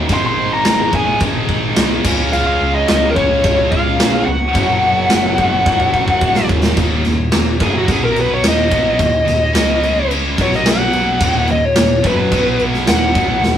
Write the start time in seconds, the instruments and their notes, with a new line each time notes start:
0.08 picked electric bass G#1, distorted electric guitar G#2 D#3 G#3, overdriven electric guitar C4 D#4, kick, crash
0.13 lead electric guitar C5 C6
0.26 lead electric guitar C5 C6
0.36 picked electric bass G#1
0.54 lead electric guitar A#4 A#5
0.65 picked electric bass G#1, lead electric guitar A#4 A#5, snare, crash
0.92 picked electric bass G#1, distorted electric guitar G#2 D#3 G#3, lead electric guitar G#4 G#5, kick
1.20 picked electric bass G#1, distorted electric guitar G#2 D#3 G#3, kick, crash
1.49 picked electric bass G#1, kick
1.76 picked electric bass C2, snare, crash
2.03 picked electric bass C#2, distorted electric guitar C#3 G#3 C#4, overdriven electric guitar F4 G#4, kick, crash
2.32 picked electric bass C#2, lead electric guitar F4 F5, crash
2.46 lead electric guitar F4 F5
2.59 picked electric bass C#2
2.74 lead electric guitar D#4 D#5
2.88 picked electric bass C#2, distorted electric guitar C#3 G#3 C#4, lead electric guitar D#4 D#5, snare, crash
3.09 lead electric guitar A#3 A#4
3.14 picked electric bass C#2, distorted electric guitar C#3 G#3 C#4, lead electric guitar C#4 C#5, kick
3.44 picked electric bass C#2, kick, crash
3.71 picked electric bass C#2, lead electric guitar F4 F5, kick
3.97 picked electric bass A#1, overdriven electric guitar C#3 G#3 C#4 F4 G#4, snare, crash
4.23 picked electric bass C#2, lead electric guitar F#4 F#5
4.53 picked electric bass F#1, distorted electric guitar F#2 C#3 F#3, overdriven electric guitar A#3 C#4 F#4, kick, crash
4.83 picked electric bass F#1
5.10 picked electric bass F#1, snare, crash
5.36 picked electric bass F#1, distorted electric guitar F#2 C#3 F#3, kick
5.64 picked electric bass F#1, distorted electric guitar F#2 C#3 F#3, kick
5.80 kick
5.94 picked electric bass F#1, kick
6.08 kick
6.21 picked electric bass A#1, kick
6.35 snare
6.47 picked electric bass D#2, overdriven electric guitar F#2 C#3 F#3 A#3 C#4 F#4, kick
6.63 snare
6.76 picked electric bass D#1, distorted electric guitar D#2 A#2 D#3, kick, crash
7.04 picked electric bass D#1, distorted electric guitar D#2 A#2, snare, crash
7.32 picked electric bass D#1, distorted electric guitar D#2 A#2, snare, crash
7.60 picked electric bass F#1, distorted electric guitar F#2 C#3 F#3, lead electric guitar G#4, kick, crash
7.78 lead electric guitar F#4
7.87 picked electric bass B1, distorted electric guitar B2 F#3 B3, kick, crash
7.92 lead electric guitar G#4
8.04 lead electric guitar A#4
8.16 crash
8.21 lead electric guitar B4
8.34 lead electric guitar C#5
8.42 picked electric bass D#1, distorted electric guitar D#2 A#2 D#3, snare, crash
8.48 lead electric guitar D#5
8.68 picked electric bass B1, distorted electric guitar B2 F#3 B3, kick, crash
8.97 picked electric bass D#1, distorted electric guitar D#2 A#2, kick, crash
9.25 picked electric bass D#1, distorted electric guitar D#2 A#2, snare, crash
9.53 picked electric bass C#2, distorted electric guitar C#3 G#3 C#4, snare, crash
9.83 crash
10.11 crash
10.37 picked electric bass B1, distorted electric guitar B2 F#3 B3, kick, crash
10.42 lead electric guitar C#5
10.53 lead electric guitar D#5, snare
10.66 lead electric guitar F#5, snare, crash
10.93 crash
11.20 picked electric bass D#1, distorted electric guitar D#2 A#2 D#3, kick, crash
11.47 picked electric bass D#1, distorted electric guitar D#2 A#2, lead electric guitar D#5, crash
11.65 lead electric guitar C#5
11.76 picked electric bass D#1, distorted electric guitar D#2 A#2, snare, crash
12.04 picked electric bass F#1, distorted electric guitar F#2 C#3 F#3, lead electric guitar B4, kick, crash
12.30 picked electric bass B1, distorted electric guitar B2 F#3 B3, kick, crash
12.60 crash
12.74 snare
12.86 picked electric bass D#1, distorted electric guitar D#2 A#2 D#3, lead electric guitar F#5, snare, crash
13.13 picked electric bass B1, distorted electric guitar B2 F#3 B3, kick, crash
13.42 picked electric bass D#1, distorted electric guitar D#2 A#2, snare